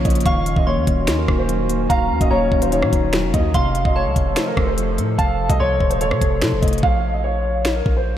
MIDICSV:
0, 0, Header, 1, 7, 480
1, 0, Start_track
1, 0, Key_signature, -5, "minor"
1, 0, Tempo, 410959
1, 299, Time_signature, 4, 2, 24, 8
1, 9551, End_track
2, 0, Start_track
2, 0, Title_t, "Synth bell"
2, 0, Program_c, 0, 98
2, 0, Note_on_c, 0, 85, 76
2, 254, Note_off_c, 0, 85, 0
2, 300, Note_on_c, 0, 85, 105
2, 751, Note_off_c, 0, 85, 0
2, 779, Note_on_c, 0, 84, 84
2, 1693, Note_off_c, 0, 84, 0
2, 2217, Note_on_c, 0, 82, 98
2, 2669, Note_off_c, 0, 82, 0
2, 2695, Note_on_c, 0, 82, 84
2, 3610, Note_off_c, 0, 82, 0
2, 4141, Note_on_c, 0, 84, 118
2, 4592, Note_off_c, 0, 84, 0
2, 4621, Note_on_c, 0, 81, 82
2, 5534, Note_off_c, 0, 81, 0
2, 6056, Note_on_c, 0, 81, 103
2, 6509, Note_off_c, 0, 81, 0
2, 6542, Note_on_c, 0, 84, 87
2, 7934, Note_off_c, 0, 84, 0
2, 9551, End_track
3, 0, Start_track
3, 0, Title_t, "Grand piano"
3, 0, Program_c, 1, 0
3, 58, Note_on_c, 1, 75, 71
3, 279, Note_off_c, 1, 75, 0
3, 301, Note_on_c, 1, 77, 114
3, 638, Note_off_c, 1, 77, 0
3, 664, Note_on_c, 1, 75, 78
3, 772, Note_off_c, 1, 75, 0
3, 779, Note_on_c, 1, 73, 84
3, 1343, Note_off_c, 1, 73, 0
3, 1382, Note_on_c, 1, 70, 72
3, 1601, Note_off_c, 1, 70, 0
3, 1616, Note_on_c, 1, 72, 73
3, 2181, Note_off_c, 1, 72, 0
3, 2213, Note_on_c, 1, 77, 110
3, 2555, Note_off_c, 1, 77, 0
3, 2585, Note_on_c, 1, 75, 90
3, 2691, Note_on_c, 1, 73, 95
3, 2692, Note_off_c, 1, 75, 0
3, 3033, Note_off_c, 1, 73, 0
3, 3060, Note_on_c, 1, 72, 84
3, 3169, Note_off_c, 1, 72, 0
3, 3180, Note_on_c, 1, 73, 85
3, 3856, Note_off_c, 1, 73, 0
3, 3898, Note_on_c, 1, 75, 83
3, 4118, Note_off_c, 1, 75, 0
3, 4138, Note_on_c, 1, 77, 113
3, 4477, Note_off_c, 1, 77, 0
3, 4494, Note_on_c, 1, 75, 74
3, 4607, Note_off_c, 1, 75, 0
3, 4624, Note_on_c, 1, 73, 84
3, 5186, Note_off_c, 1, 73, 0
3, 5215, Note_on_c, 1, 70, 78
3, 5437, Note_off_c, 1, 70, 0
3, 5457, Note_on_c, 1, 72, 76
3, 6022, Note_off_c, 1, 72, 0
3, 6052, Note_on_c, 1, 77, 104
3, 6394, Note_off_c, 1, 77, 0
3, 6420, Note_on_c, 1, 75, 92
3, 6530, Note_off_c, 1, 75, 0
3, 6537, Note_on_c, 1, 73, 98
3, 6876, Note_off_c, 1, 73, 0
3, 6896, Note_on_c, 1, 72, 82
3, 7007, Note_off_c, 1, 72, 0
3, 7022, Note_on_c, 1, 73, 90
3, 7697, Note_off_c, 1, 73, 0
3, 7734, Note_on_c, 1, 75, 78
3, 7957, Note_off_c, 1, 75, 0
3, 7975, Note_on_c, 1, 77, 104
3, 8315, Note_off_c, 1, 77, 0
3, 8336, Note_on_c, 1, 75, 70
3, 8448, Note_off_c, 1, 75, 0
3, 8455, Note_on_c, 1, 73, 82
3, 9021, Note_off_c, 1, 73, 0
3, 9058, Note_on_c, 1, 70, 76
3, 9279, Note_off_c, 1, 70, 0
3, 9304, Note_on_c, 1, 72, 73
3, 9551, Note_off_c, 1, 72, 0
3, 9551, End_track
4, 0, Start_track
4, 0, Title_t, "Ambient pad"
4, 0, Program_c, 2, 92
4, 0, Note_on_c, 2, 58, 82
4, 0, Note_on_c, 2, 61, 91
4, 0, Note_on_c, 2, 65, 75
4, 252, Note_off_c, 2, 58, 0
4, 252, Note_off_c, 2, 61, 0
4, 252, Note_off_c, 2, 65, 0
4, 299, Note_on_c, 2, 51, 78
4, 299, Note_on_c, 2, 61, 76
4, 299, Note_on_c, 2, 66, 89
4, 4101, Note_off_c, 2, 51, 0
4, 4101, Note_off_c, 2, 61, 0
4, 4101, Note_off_c, 2, 66, 0
4, 4139, Note_on_c, 2, 48, 75
4, 4139, Note_on_c, 2, 53, 80
4, 4139, Note_on_c, 2, 69, 87
4, 7941, Note_off_c, 2, 48, 0
4, 7941, Note_off_c, 2, 53, 0
4, 7941, Note_off_c, 2, 69, 0
4, 9551, End_track
5, 0, Start_track
5, 0, Title_t, "Synth keys"
5, 0, Program_c, 3, 88
5, 0, Control_c, 3, 64, 127
5, 0, Note_on_c, 3, 49, 80
5, 0, Note_on_c, 3, 53, 90
5, 0, Note_on_c, 3, 58, 92
5, 0, Note_on_c, 3, 61, 96
5, 0, Note_on_c, 3, 73, 105
5, 55, Note_off_c, 3, 58, 0
5, 55, Note_on_c, 3, 58, 85
5, 297, Note_off_c, 3, 58, 0
5, 299, Note_off_c, 3, 49, 0
5, 300, Note_off_c, 3, 53, 0
5, 300, Note_off_c, 3, 61, 0
5, 300, Note_off_c, 3, 73, 0
5, 300, Note_on_c, 3, 51, 97
5, 313, Control_c, 3, 64, 0
5, 516, Control_c, 3, 64, 127
5, 781, Note_on_c, 3, 58, 92
5, 1017, Note_on_c, 3, 61, 84
5, 1257, Note_on_c, 3, 63, 100
5, 1492, Note_off_c, 3, 51, 0
5, 1506, Note_on_c, 3, 51, 80
5, 1741, Note_on_c, 3, 54, 83
5, 1964, Note_off_c, 3, 58, 0
5, 1978, Note_on_c, 3, 58, 84
5, 2207, Note_off_c, 3, 51, 0
5, 2218, Note_off_c, 3, 61, 0
5, 2221, Note_on_c, 3, 51, 98
5, 2458, Note_off_c, 3, 63, 0
5, 2684, Note_off_c, 3, 58, 0
5, 2698, Note_on_c, 3, 58, 99
5, 2937, Note_on_c, 3, 61, 85
5, 2940, Note_off_c, 3, 54, 0
5, 3175, Note_on_c, 3, 63, 104
5, 3407, Note_off_c, 3, 51, 0
5, 3421, Note_on_c, 3, 51, 77
5, 3660, Note_on_c, 3, 54, 86
5, 3882, Note_off_c, 3, 58, 0
5, 3896, Note_on_c, 3, 58, 81
5, 4137, Note_off_c, 3, 63, 0
5, 4138, Note_off_c, 3, 58, 0
5, 4138, Note_off_c, 3, 61, 0
5, 4139, Note_off_c, 3, 54, 0
5, 4140, Note_off_c, 3, 51, 0
5, 4141, Note_on_c, 3, 48, 92
5, 4156, Control_c, 3, 64, 0
5, 4352, Control_c, 3, 64, 127
5, 4626, Note_on_c, 3, 57, 91
5, 5100, Note_on_c, 3, 72, 104
5, 5326, Note_off_c, 3, 48, 0
5, 5340, Note_on_c, 3, 48, 78
5, 5585, Note_on_c, 3, 53, 91
5, 5800, Note_off_c, 3, 57, 0
5, 5814, Note_on_c, 3, 57, 83
5, 6042, Note_off_c, 3, 48, 0
5, 6056, Note_on_c, 3, 48, 87
5, 6300, Note_off_c, 3, 72, 0
5, 6526, Note_off_c, 3, 57, 0
5, 6540, Note_on_c, 3, 57, 87
5, 6782, Note_off_c, 3, 53, 0
5, 7023, Note_on_c, 3, 69, 105
5, 7247, Note_off_c, 3, 48, 0
5, 7261, Note_on_c, 3, 48, 75
5, 7504, Note_on_c, 3, 53, 86
5, 7727, Note_off_c, 3, 57, 0
5, 7741, Note_on_c, 3, 57, 91
5, 7980, Note_off_c, 3, 48, 0
5, 7980, Note_off_c, 3, 57, 0
5, 7981, Note_off_c, 3, 53, 0
5, 7981, Note_off_c, 3, 69, 0
5, 7993, Control_c, 3, 64, 0
5, 9551, End_track
6, 0, Start_track
6, 0, Title_t, "808-style bass"
6, 0, Program_c, 4, 38
6, 60, Note_on_c, 4, 34, 105
6, 290, Note_off_c, 4, 34, 0
6, 299, Note_on_c, 4, 27, 113
6, 645, Note_off_c, 4, 27, 0
6, 659, Note_on_c, 4, 27, 109
6, 899, Note_on_c, 4, 39, 99
6, 917, Note_off_c, 4, 27, 0
6, 1013, Note_off_c, 4, 39, 0
6, 1020, Note_on_c, 4, 27, 107
6, 1260, Note_on_c, 4, 39, 99
6, 1277, Note_off_c, 4, 27, 0
6, 1487, Note_off_c, 4, 39, 0
6, 1499, Note_on_c, 4, 27, 106
6, 2190, Note_off_c, 4, 27, 0
6, 2219, Note_on_c, 4, 27, 107
6, 2459, Note_on_c, 4, 39, 102
6, 2477, Note_off_c, 4, 27, 0
6, 2573, Note_off_c, 4, 39, 0
6, 2579, Note_on_c, 4, 27, 104
6, 2694, Note_off_c, 4, 27, 0
6, 2699, Note_on_c, 4, 27, 106
6, 2930, Note_off_c, 4, 27, 0
6, 2940, Note_on_c, 4, 27, 108
6, 3299, Note_on_c, 4, 46, 99
6, 3317, Note_off_c, 4, 27, 0
6, 3413, Note_off_c, 4, 46, 0
6, 3419, Note_on_c, 4, 27, 104
6, 3779, Note_on_c, 4, 29, 100
6, 3797, Note_off_c, 4, 27, 0
6, 3893, Note_off_c, 4, 29, 0
6, 3900, Note_on_c, 4, 39, 111
6, 4130, Note_off_c, 4, 39, 0
6, 4139, Note_on_c, 4, 29, 114
6, 4485, Note_off_c, 4, 29, 0
6, 4499, Note_on_c, 4, 29, 105
6, 4739, Note_on_c, 4, 36, 99
6, 4757, Note_off_c, 4, 29, 0
6, 4853, Note_off_c, 4, 36, 0
6, 4860, Note_on_c, 4, 29, 104
6, 5090, Note_off_c, 4, 29, 0
6, 5339, Note_on_c, 4, 29, 108
6, 5819, Note_on_c, 4, 45, 102
6, 5837, Note_off_c, 4, 29, 0
6, 6047, Note_off_c, 4, 45, 0
6, 6059, Note_on_c, 4, 29, 109
6, 6405, Note_off_c, 4, 29, 0
6, 6419, Note_on_c, 4, 36, 107
6, 6534, Note_off_c, 4, 36, 0
6, 6540, Note_on_c, 4, 36, 109
6, 6770, Note_off_c, 4, 36, 0
6, 6780, Note_on_c, 4, 27, 107
6, 7140, Note_on_c, 4, 48, 97
6, 7157, Note_off_c, 4, 27, 0
6, 7253, Note_off_c, 4, 48, 0
6, 7259, Note_on_c, 4, 29, 106
6, 7499, Note_on_c, 4, 48, 100
6, 7517, Note_off_c, 4, 29, 0
6, 7619, Note_on_c, 4, 29, 99
6, 7637, Note_off_c, 4, 48, 0
6, 7733, Note_off_c, 4, 29, 0
6, 7740, Note_on_c, 4, 29, 106
6, 7970, Note_off_c, 4, 29, 0
6, 7979, Note_on_c, 4, 34, 109
6, 9132, Note_off_c, 4, 34, 0
6, 9179, Note_on_c, 4, 34, 104
6, 9524, Note_off_c, 4, 34, 0
6, 9551, End_track
7, 0, Start_track
7, 0, Title_t, "Drums"
7, 59, Note_on_c, 9, 42, 62
7, 60, Note_on_c, 9, 36, 102
7, 119, Note_off_c, 9, 42, 0
7, 119, Note_on_c, 9, 42, 64
7, 177, Note_off_c, 9, 36, 0
7, 179, Note_off_c, 9, 42, 0
7, 179, Note_on_c, 9, 42, 63
7, 239, Note_off_c, 9, 42, 0
7, 239, Note_on_c, 9, 42, 65
7, 299, Note_off_c, 9, 42, 0
7, 299, Note_on_c, 9, 36, 126
7, 299, Note_on_c, 9, 42, 75
7, 416, Note_off_c, 9, 36, 0
7, 416, Note_off_c, 9, 42, 0
7, 539, Note_on_c, 9, 42, 70
7, 656, Note_off_c, 9, 42, 0
7, 659, Note_on_c, 9, 36, 114
7, 776, Note_off_c, 9, 36, 0
7, 1019, Note_on_c, 9, 42, 73
7, 1020, Note_on_c, 9, 36, 88
7, 1136, Note_off_c, 9, 42, 0
7, 1137, Note_off_c, 9, 36, 0
7, 1253, Note_on_c, 9, 26, 96
7, 1259, Note_on_c, 9, 38, 120
7, 1259, Note_on_c, 9, 42, 88
7, 1369, Note_off_c, 9, 26, 0
7, 1375, Note_off_c, 9, 38, 0
7, 1376, Note_off_c, 9, 42, 0
7, 1499, Note_on_c, 9, 36, 97
7, 1499, Note_on_c, 9, 37, 105
7, 1616, Note_off_c, 9, 36, 0
7, 1616, Note_off_c, 9, 37, 0
7, 1740, Note_on_c, 9, 42, 82
7, 1856, Note_off_c, 9, 42, 0
7, 1980, Note_on_c, 9, 42, 73
7, 2096, Note_off_c, 9, 42, 0
7, 2219, Note_on_c, 9, 36, 125
7, 2220, Note_on_c, 9, 42, 78
7, 2336, Note_off_c, 9, 36, 0
7, 2336, Note_off_c, 9, 42, 0
7, 2579, Note_on_c, 9, 36, 116
7, 2579, Note_on_c, 9, 42, 78
7, 2696, Note_off_c, 9, 36, 0
7, 2696, Note_off_c, 9, 42, 0
7, 2940, Note_on_c, 9, 36, 87
7, 3057, Note_off_c, 9, 36, 0
7, 3059, Note_on_c, 9, 42, 85
7, 3176, Note_off_c, 9, 42, 0
7, 3179, Note_on_c, 9, 42, 85
7, 3296, Note_off_c, 9, 42, 0
7, 3299, Note_on_c, 9, 37, 104
7, 3416, Note_off_c, 9, 37, 0
7, 3419, Note_on_c, 9, 36, 94
7, 3419, Note_on_c, 9, 42, 76
7, 3536, Note_off_c, 9, 36, 0
7, 3536, Note_off_c, 9, 42, 0
7, 3653, Note_on_c, 9, 26, 96
7, 3659, Note_on_c, 9, 38, 120
7, 3770, Note_off_c, 9, 26, 0
7, 3776, Note_off_c, 9, 38, 0
7, 3899, Note_on_c, 9, 42, 74
7, 3900, Note_on_c, 9, 36, 101
7, 4016, Note_off_c, 9, 42, 0
7, 4017, Note_off_c, 9, 36, 0
7, 4139, Note_on_c, 9, 36, 126
7, 4139, Note_on_c, 9, 42, 76
7, 4255, Note_off_c, 9, 42, 0
7, 4256, Note_off_c, 9, 36, 0
7, 4379, Note_on_c, 9, 42, 72
7, 4495, Note_off_c, 9, 42, 0
7, 4499, Note_on_c, 9, 36, 109
7, 4616, Note_off_c, 9, 36, 0
7, 4859, Note_on_c, 9, 42, 72
7, 4860, Note_on_c, 9, 36, 88
7, 4976, Note_off_c, 9, 42, 0
7, 4977, Note_off_c, 9, 36, 0
7, 5093, Note_on_c, 9, 26, 100
7, 5099, Note_on_c, 9, 38, 119
7, 5099, Note_on_c, 9, 42, 84
7, 5210, Note_off_c, 9, 26, 0
7, 5216, Note_off_c, 9, 38, 0
7, 5216, Note_off_c, 9, 42, 0
7, 5339, Note_on_c, 9, 36, 92
7, 5339, Note_on_c, 9, 37, 102
7, 5456, Note_off_c, 9, 36, 0
7, 5456, Note_off_c, 9, 37, 0
7, 5580, Note_on_c, 9, 42, 83
7, 5697, Note_off_c, 9, 42, 0
7, 5820, Note_on_c, 9, 42, 75
7, 5937, Note_off_c, 9, 42, 0
7, 6059, Note_on_c, 9, 36, 126
7, 6060, Note_on_c, 9, 42, 76
7, 6176, Note_off_c, 9, 36, 0
7, 6177, Note_off_c, 9, 42, 0
7, 6419, Note_on_c, 9, 36, 111
7, 6419, Note_on_c, 9, 42, 80
7, 6536, Note_off_c, 9, 36, 0
7, 6536, Note_off_c, 9, 42, 0
7, 6780, Note_on_c, 9, 36, 89
7, 6897, Note_off_c, 9, 36, 0
7, 6899, Note_on_c, 9, 42, 86
7, 7016, Note_off_c, 9, 42, 0
7, 7019, Note_on_c, 9, 42, 89
7, 7136, Note_off_c, 9, 42, 0
7, 7139, Note_on_c, 9, 37, 102
7, 7256, Note_off_c, 9, 37, 0
7, 7259, Note_on_c, 9, 36, 95
7, 7259, Note_on_c, 9, 42, 77
7, 7376, Note_off_c, 9, 36, 0
7, 7376, Note_off_c, 9, 42, 0
7, 7493, Note_on_c, 9, 26, 96
7, 7499, Note_on_c, 9, 38, 120
7, 7610, Note_off_c, 9, 26, 0
7, 7616, Note_off_c, 9, 38, 0
7, 7739, Note_on_c, 9, 42, 63
7, 7740, Note_on_c, 9, 36, 106
7, 7799, Note_off_c, 9, 42, 0
7, 7799, Note_on_c, 9, 42, 64
7, 7857, Note_off_c, 9, 36, 0
7, 7859, Note_off_c, 9, 42, 0
7, 7859, Note_on_c, 9, 42, 64
7, 7919, Note_off_c, 9, 42, 0
7, 7919, Note_on_c, 9, 42, 63
7, 7979, Note_on_c, 9, 36, 124
7, 8036, Note_off_c, 9, 42, 0
7, 8095, Note_off_c, 9, 36, 0
7, 8933, Note_on_c, 9, 26, 94
7, 8939, Note_on_c, 9, 38, 119
7, 9050, Note_off_c, 9, 26, 0
7, 9056, Note_off_c, 9, 38, 0
7, 9179, Note_on_c, 9, 36, 94
7, 9296, Note_off_c, 9, 36, 0
7, 9551, End_track
0, 0, End_of_file